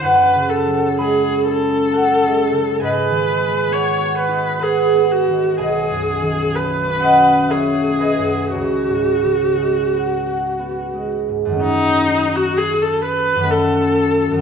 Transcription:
<<
  \new Staff \with { instrumentName = "Viola" } { \time 3/4 \key fis \minor \tempo 4 = 63 b'8 a'8 gis'8 a'4. | b'4 cis''8 b'8 gis'8 fis'8 | gis'4 b'4 gis'4 | fis'2~ fis'8 r8 |
dis'8. fis'16 gis'16 a'16 b'8 a'4 | }
  \new Staff \with { instrumentName = "Harp" } { \time 3/4 \key fis \minor << { fis''4 b''4 a''4 | gis''2 b'4 | gis''4. fis''8 e''8 dis''8 | cis''2.~ |
cis''2. | } \\ { cis''4 gis''4 fis''4 | dis''2 gis'4 | dis''4. dis''8 cis''8 b'8 | gis'2. |
<fis, dis a cis' fis'>2 <fis, dis a cis' fis'>4 | } >> }
  \new Staff \with { instrumentName = "Harp" } { \clef bass \time 3/4 \key fis \minor \tuplet 3/2 { <fis, fis a'>8 cis8 fis8 gis8 cis'8 a'8 cis'8 gis8 cis8 } | \tuplet 3/2 { gis,8 dis8 gis8 b8 fis'8 dis'8 fis'8 b8 dis8 } | \tuplet 3/2 { b,,8 fis,8 dis8 a8 cis'8 fis'8 cis'8 a8 fis,8 } | \tuplet 3/2 { cis,8 gis,8 cis8 gis8 b8 fis'8 b8 gis8 gis,8 } |
r2. | }
>>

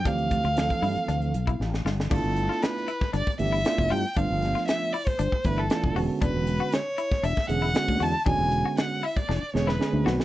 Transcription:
<<
  \new Staff \with { instrumentName = "Violin" } { \time 4/4 \key e \phrygian \tempo 4 = 117 f''2. r4 | a'4 b'4 d''8 e''4 g''8 | f''4 e''8 d''16 c''8. b'16 a'8. r8 | b'4 cis''4 e''8 fis''4 a''8 |
gis''4 fis''8 e''16 d''8. cis''16 b'8. r8 | }
  \new Staff \with { instrumentName = "Clean electric guitar" } { \time 4/4 \key e \phrygian d'8 r16 f'8 r16 e'8 d'8 r16 e'8 r16 f'8 | d'8 r16 f'8 r16 e'8 d'8 r16 e'8 r16 f'8 | d'8 r16 f'8 r16 e'8 d'8 r16 e'8 r16 fis'8 | d'8 r16 fis'8 r16 e'8 d'8 r16 e'8 r16 fis'8 |
d'8 r16 fis'8 r16 e'8 d'8 r16 e'8 r16 fis'8 | }
  \new Staff \with { instrumentName = "Tine electric piano" } { \time 4/4 \key e \phrygian <e f a c' g'>8. r16 <e f a c' a'>4. r4. | <a b d' e' f'>4. r4 <e a b d' g'>8 <a b d' e' f'>8. r16 | <f a b d' f'>4. r4 <e a b d' e'>8 <e a b d' f'>8 <d gis b cis' fis'>8~ | <d gis b cis' fis'>4 r4. <d gis b cis' gis'>8 <d gis b cis' fis'>8. r16 |
<d gis b cis' fis'>4. r4 <d gis b cis' gis'>8 <d gis b cis' gis'>8 <dis a b c' fis'>8 | }
  \new Staff \with { instrumentName = "Fretless electric bass" } { \clef bass \time 4/4 \key e \phrygian d,8. d,8 r16 g,16 r16 d,8 b,,8 a,,8 g,,8 | g,,16 g,,8 r4 r16 g,,16 r16 g,,8 r16 f,,16 g,16 r16 | g,,16 g,,8 r4 r16 g,,16 r16 g,,8 r16 f,,16 e,,16 r16 | e,,16 e,,8 r4 r16 e,,16 r16 e,,8 r16 d,16 e,16 r16 |
e,,16 e,,8 r4 r16 e,,16 r16 e,,8 r16 d,16 b,,16 r16 | }
  \new DrumStaff \with { instrumentName = "Drums" } \drummode { \time 4/4 <hh bd>16 hh16 <hh bd>16 hh16 <hh sn>16 <hh bd>16 hho16 hh16 hh16 hh16 hh16 <hh bd>16 sn16 sn16 sn16 sn16 | <cymc bd>8 hh16 sn16 <hh sn>16 sn16 hh16 <bd sn>16 hh16 bd16 hh8 <hh sn>16 bd16 hho8 | <hh bd>8 <hh sn>16 sn16 <hh sn>8 hho16 bd16 hh16 bd16 <hh bd>8 <hh sn>16 bd16 hho8 | <hh bd>8 hh8 <hh sn>8 hh16 <bd sn>16 hh16 <bd sn>16 hh16 sn16 <hh sn>16 bd16 hho8 |
<hh bd>8 hh8 <hh sn>8 hho16 bd16 sn8 sn16 sn16 sn8 sn16 sn16 | }
>>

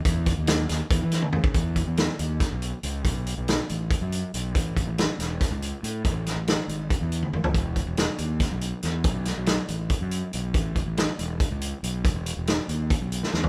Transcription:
<<
  \new Staff \with { instrumentName = "Fingered electric bass" } { \clef bass \time 7/8 \key e \major \tempo 4 = 140 e,8. dis,8. dis,16 r16 e,16 e8 r16 cis8 | e,8. e,8 r16 dis,8 r16 b,,8 r16 cis,8 | b,,8. b,,8 r16 a,,8 r16 fis,8 r16 b,,8 | a,,8. a,,8 r16 e,,8 r16 cis,8 r16 a,8 |
a,,8. a,,8 r16 gis,,8 r16 e,8 r16 fis,,8 | e,,8. e,,8 r16 dis,8 r16 b,,8 r16 e,8 | b,,8. b,,8 r16 a,,8 r16 fis,8 r16 b,,8 | a,,8. a,,8 r16 e,,8 r16 cis,8 r16 b,,8 |
e,,8. e,,8 r16 dis,8 r16 b,,8 r16 e,16 r16 | }
  \new DrumStaff \with { instrumentName = "Drums" } \drummode { \time 7/8 <hh bd>8 <hh bd>8 <hh sn>8 <hh sn>8 <hh bd>8 <hh sn>16 tommh16 toml16 bd16 | <hh bd>8 <hh bd>8 <hh sn>8 hh8 <hh bd sn>8 hh8 hh8 | <hh bd>8 hh8 <hh sn>8 hh8 <hh bd>8 hh8 hh8 | <hh bd>8 <hh bd>8 <hh sn>8 <hh sn>8 <hh bd sn>8 hh8 hh8 |
<hh bd>8 <hh sn>8 <hh sn>8 hh8 <hh bd>8 hh16 tommh16 toml16 tomfh16 | <hh bd>8 <hh bd>8 <hh sn>8 hh8 <hh bd sn>8 hh8 <hh sn>8 | <hh bd>8 <hh sn>8 <hh sn>8 hh8 <hh bd>8 hh8 hh8 | <hh bd>8 <hh bd>8 <hh sn>8 hh8 <hh bd>8 hh8 hh8 |
<hh bd>8 hh8 <hh sn>8 hh8 <hh bd>8 hh16 sn16 sn16 tomfh16 | }
>>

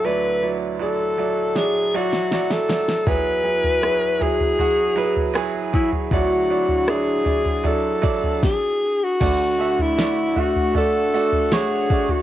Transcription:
<<
  \new Staff \with { instrumentName = "Alto saxophone" } { \time 4/4 \key d \lydian \tempo 4 = 79 b'8. r16 a'4 gis'8 fis'8 fis'16 a'8. | b'4. gis'4.~ gis'16 r16 e'8 | fis'4 gis'4 a'4 gis'8. fis'16~ | fis'8. e'8. fis'8 a'4 gis'8. fis'16 | }
  \new Staff \with { instrumentName = "Glass harmonica" } { \time 4/4 \key d \lydian r1 | <e' fis' gis'>1 | <d' e' fis'>2. r4 | <a d' fis''>1 | }
  \new Staff \with { instrumentName = "Grand piano" } { \time 4/4 \key d \lydian <fis e' d''>8 <fis e' d''>8 <fis e' d''>8 <fis e' d''>8 <fis e' d''>8 <fis e' d''>8 <fis e' d''>8 <fis e' d''>8 | <fis e' gis'>8 <fis e' gis'>8 <fis e' gis'>8 <fis e' gis'>8 <fis e' fis'>8 <fis e' b'>8 <fis e' gis'>8 <fis e' gis'>8 | <fis e' d''>8 <fis e' d''>8 <fis e' d''>8 <fis e' d''>8 <fis e' d''>8 <fis e' d''>8 r4 | <a fis' d''>8 <a fis' e''>8 <a fis' d''>8 <a fis' e''>8 <a fis' d''>8 <a fis' d''>8 <a fis' cis''>8 <a fis' d''>8 | }
  \new Staff \with { instrumentName = "Grand piano" } { \clef bass \time 4/4 \key d \lydian <d, d>1 | e,1 | <d, d>2. r4 | <d, d>1 | }
  \new DrumStaff \with { instrumentName = "Drums" } \drummode { \time 4/4 r4 r4 sn8. sn16 sn16 sn16 sn16 sn16 | <bd tomfh>8. tomfh16 ss8 tomfh16 tomfh16 tomfh8. tomfh16 ss8 bd16 tomfh16 | <bd tomfh>8. tomfh16 ss8 tomfh16 tomfh16 tomfh8 bd16 tomfh16 <bd sn>4 | <cymc bd tomfh>8. tomfh16 sn8 tomfh16 tomfh16 tomfh8. tomfh16 sn8 bd16 tomfh16 | }
>>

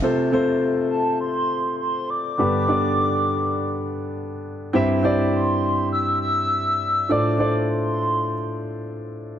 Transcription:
<<
  \new Staff \with { instrumentName = "Soft synth lead" } { \time 4/4 \key f \lydian \tempo 4 = 102 r4. a''8 c'''4 c'''8 d'''8~ | d'''2.~ d'''8 r8 | r4 c'''4 e'''8 e'''4. | d'''8 d'''8 c'''2 r4 | }
  \new Staff \with { instrumentName = "Grand piano" } { \time 4/4 \key f \lydian <a c' f' a' c''>8 <a c' f' a' c''>4. r2 | <b d' g' a' b'>8 <b d' g' a' d''>4. r2 | <c' e' g' c'' e''>8 <c' e' g' c'' d''>4. r2 | <d' f' a' c'' d''>8 <d' f' a' c'' d''>4. r2 | }
  \new Staff \with { instrumentName = "Grand piano" } { \clef bass \time 4/4 \key f \lydian c4. r2 r8 | <g, d>4. r2 r8 | g,4. r2 r8 | a,4. r2 r8 | }
>>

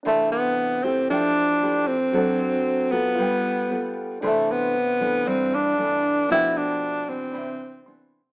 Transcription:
<<
  \new Staff \with { instrumentName = "Grand piano" } { \time 4/4 \key c \major \tempo 4 = 115 << { r1 | r1 | r1 | r2. c'''4 | } \\ { <d' a' e'' c'''>2 <a' e'' g''>2 | <fis d' a' c'' fis''>2 <f' a' b' g''>2 | <d' a' e'' c'''>1 | <b f' a' b' g''>2 <c' d' e'' b''>2 | } >> }
  \new Staff \with { instrumentName = "Tenor saxophone" } { \time 4/4 \key c \major a8 b4 c'8 d'4. c'8~ | c'4. b2 r8 | a8 b4. c'8 d'4. | e'8 d'4 c'2 r8 | }
  \new Staff \with { instrumentName = "Nylon-string guitar" } { \time 4/4 \key c \major << { <e a d'>4. <a e' g'>4. <a e' g'>8 r8 | <c' d' a'>4. <b f' a'>4. <b f' a'>4 | <e a d'>4 r8 <e a d'>4. <e a d'>4 | <f a d'>4. <e d'>4. <e b d'>8 r8 | } \\ { c2 f2 | fis2 g2 | c2 g,2 | b,2 c2 | } >> }
>>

